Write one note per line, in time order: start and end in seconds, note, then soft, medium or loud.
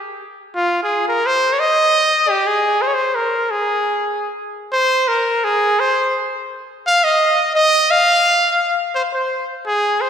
0.55 0.79 F4 medium
0.83 1.06 G#4 medium
1.08 1.28 A#4 medium
1.26 1.54 C5 loud
1.53 1.61 C#5 medium
1.60 2.31 D#5 loud
2.29 2.49 G4 medium
2.47 2.83 G#4 loud
2.82 2.89 C5 medium
2.87 2.95 C#5 medium
2.94 3.17 C5 medium
3.15 3.52 A#4 medium
3.51 4.38 G#4 medium
4.73 5.10 C5 loud
5.08 5.46 A#4 medium
5.44 5.81 G#4 medium
5.80 6.15 C5 loud
6.87 7.05 F5 loud
7.04 7.55 D#5 loud
7.55 7.92 D#5 loud
7.90 8.78 F5 loud
8.95 9.03 C5 medium
9.13 9.46 C5 medium
9.67 10.03 G#4 medium
10.01 10.10 C5 medium